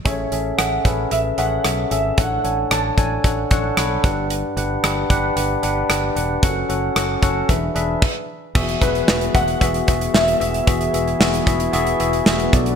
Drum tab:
CC |----------------|----------------|----------------|------------x---|
HH |x-x-x-x-x-x-x-x-|x-x-x-x-x-x-x-x-|x-x-x-x-x-x-x-x-|x-x-x-x-x-x-----|
SD |----r-------r---|----r-------r---|----r-------r---|----r-----------|
BD |o-----o---------|o-----o-o-o---o-|------o---------|o-----o-o---o---|

CC |x---------------|----------------|
HH |-xxx-xxxxxxx-xxx|xxxx-xxxxxxx-xxx|
SD |----o-------o---|----o-------o---|
BD |o-o---o-o-o-----|o-----o-------o-|